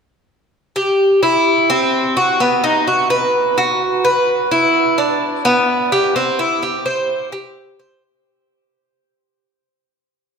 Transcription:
0.76 1.21 G4 medium
1.23 1.68 E4 medium
1.70 2.15 C4 medium
2.17 2.40 F#4 medium
2.40 2.63 B3 medium
2.64 2.86 D#4 medium
2.87 3.10 F#4 medium
3.10 3.56 B4 medium
3.58 4.03 F#4 medium
4.05 4.50 B4 medium
4.51 4.97 E4 medium
4.98 5.43 D4 medium
5.45 5.90 B3 medium
5.92 6.15 G4 medium
6.16 6.38 C4 medium
6.39 6.62 E4 medium
6.63 6.85 G4 medium
6.86 7.31 C5 medium
7.32 7.78 G4 medium
7.79 8.02 C5 medium

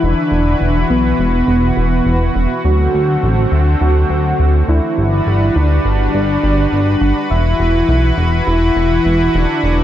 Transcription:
0.00 0.14 E1 loud
0.00 2.61 E3 medium
0.00 0.78 D4 loud
0.00 2.61 E4 medium
0.00 4.94 F#4 medium
0.00 2.61 B4 medium
0.32 0.55 E1 loud
0.61 0.84 E1 medium
0.90 1.13 B1 medium
0.90 2.53 B3 loud
1.19 1.42 E1 loud
1.48 1.72 E1 medium
1.77 2.01 E1 medium
2.06 2.30 E1 medium
2.35 2.47 E1 loud
2.65 2.88 D2 loud
2.65 4.95 D3 medium
2.65 4.95 A3 medium
2.65 4.95 C4 medium
2.65 3.70 F#4 loud
2.94 3.17 D2 medium
3.23 3.46 A1 medium
3.52 3.76 D2 loud
3.81 4.05 D2 loud
3.81 4.57 F#4 loud
4.10 4.34 D2 medium
4.40 4.63 D2 medium
4.69 4.80 D2 loud
4.69 5.57 E4 loud
4.98 5.21 G1 loud
4.98 7.28 G3 medium
4.98 7.28 D4 medium
4.98 9.84 F#4 medium
4.98 9.84 B4 medium
5.27 5.50 G1 medium
5.56 5.79 D2 medium
5.56 7.19 D4 loud
5.85 6.09 G1 loud
6.14 6.38 G1 loud
6.43 6.67 G1 medium
6.72 6.96 G1 medium
7.01 7.13 G1 loud
7.30 7.54 E1 loud
7.30 9.84 E3 medium
7.30 9.84 E4 medium
7.30 8.35 E4 loud
7.60 7.83 E1 medium
7.89 8.12 B1 medium
8.18 8.41 E1 loud
8.47 8.70 E1 loud
8.47 9.36 E4 loud
8.76 9.00 E1 medium
9.05 9.29 E1 medium
9.34 9.46 E1 loud
9.34 9.84 D4 loud
9.64 9.84 E1 loud

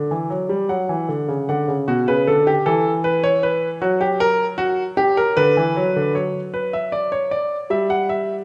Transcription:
0.00 0.10 D3 medium
0.00 0.66 D5 medium
0.11 0.30 E3 medium
0.30 0.49 F#3 medium
0.49 0.69 G3 medium
0.69 0.89 F#3 medium
0.69 1.47 F#5 medium
0.89 1.09 E3 medium
1.09 1.29 D3 medium
1.28 1.48 C#3 medium
1.49 1.68 D3 medium
1.49 1.73 F#5 medium
1.68 1.88 C#3 medium
1.88 2.07 B2 medium
1.88 2.07 F#4 medium
2.08 2.27 C#3 medium
2.08 2.27 B4 medium
2.27 2.52 D3 medium
2.27 2.46 A4 medium
2.47 2.66 G4 medium
2.66 3.78 E3 medium
2.66 2.90 A4 medium
3.04 3.23 B4 medium
3.24 3.42 C#5 medium
3.43 3.67 B4 medium
3.81 5.32 F#3 medium
3.81 4.00 F#4 medium
4.01 4.19 G4 medium
4.20 4.44 A#4 loud
4.58 4.82 F#4 loud
4.97 5.16 G4 medium
5.17 5.36 A#4 medium
5.37 5.56 D3 medium
5.37 6.12 B4 loud
5.57 5.76 E3 medium
5.76 5.95 F#3 medium
5.96 6.15 D3 medium
6.15 7.66 F#3 medium
6.15 6.39 C#5 medium
6.54 6.73 B4 medium
6.73 6.92 E5 medium
6.92 7.11 D5 medium
7.12 7.31 C#5 medium
7.31 7.56 D5 medium
7.70 8.44 G3 medium
7.70 7.89 E5 medium
7.90 8.09 F#5 medium
8.09 8.33 E5 medium

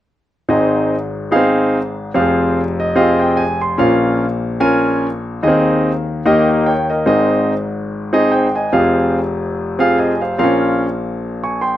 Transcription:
0.49 2.10 G#1 medium
0.49 2.10 G#2 medium
0.49 0.94 C4 medium
0.49 0.94 D#4 medium
0.49 0.95 G#4 medium
0.49 0.95 D#5 medium
1.31 1.37 B3 medium
1.31 1.77 D#4 medium
1.31 1.77 G#4 medium
1.31 1.77 F5 medium
1.36 1.79 C4 medium
2.14 3.76 F1 medium
2.14 3.75 F2 medium
2.14 2.59 C4 medium
2.14 2.60 F4 medium
2.14 2.21 G4 medium
2.14 2.60 F5 medium
2.20 2.62 G#4 medium
2.80 2.95 D#5 medium
2.96 3.41 C4 medium
2.96 3.41 F4 medium
2.96 3.02 G4 medium
2.96 3.42 D#5 medium
2.96 3.18 F5 medium
3.01 3.44 G#4 medium
3.20 3.36 G5 medium
3.37 3.60 G#5 medium
3.62 3.78 C6 medium
3.78 5.40 A#1 medium
3.78 5.40 A#2 medium
3.78 4.24 C#4 medium
3.78 4.24 F4 medium
3.78 4.24 A#4 medium
3.78 4.24 F5 medium
4.60 5.06 C#4 medium
4.60 5.06 F4 medium
4.60 5.06 A#4 medium
4.60 5.06 G#5 medium
5.42 6.22 D#2 medium
5.42 6.22 D#3 medium
5.42 5.49 A#3 medium
5.42 5.88 D#4 medium
5.42 5.89 G#4 medium
5.42 5.89 D#5 medium
5.48 5.91 C4 medium
6.25 7.04 D#2 medium
6.25 7.04 D#3 medium
6.25 6.71 A#3 medium
6.25 6.71 D#4 medium
6.25 6.71 G4 medium
6.25 6.47 D#5 medium
6.49 6.67 A#4 soft
6.49 6.66 D#5 medium
6.66 6.90 C#5 medium
6.66 6.89 G5 medium
6.90 7.30 A#4 soft
6.90 7.06 D#5 medium
7.06 8.68 G#1 medium
7.06 8.68 G#2 medium
7.06 7.52 C4 medium
7.06 7.53 D#4 medium
7.06 7.53 G#4 medium
7.06 7.53 D#5 medium
8.13 8.46 C4 medium
8.13 8.46 D#4 medium
8.13 8.46 G#4 medium
8.13 8.32 D#5 medium
8.32 8.55 C5 medium
8.32 8.54 G5 medium
8.55 8.95 D#5 medium
8.55 8.95 G#5 medium
8.72 10.34 F1 medium
8.72 10.34 F2 medium
8.72 9.18 C4 medium
8.72 9.18 F4 medium
8.72 8.79 G4 soft
8.72 9.18 F5 medium
8.78 9.21 G#4 medium
9.79 10.11 C4 medium
9.79 10.11 F4 medium
9.79 10.12 G#4 medium
9.79 9.97 F5 medium
9.98 10.20 D#5 medium
9.98 10.20 G#5 medium
10.21 10.60 C5 soft
10.21 10.38 F5 medium
10.38 11.77 A#1 medium
10.38 11.77 A#2 medium
10.38 10.44 C4 medium
10.38 10.83 F4 medium
10.38 10.84 A#4 medium
10.38 10.84 F5 medium
10.44 10.86 C#4 medium
11.44 11.61 G#5 soft
11.44 11.61 C#6 medium
11.61 11.77 G5 medium
11.61 11.77 C6 medium

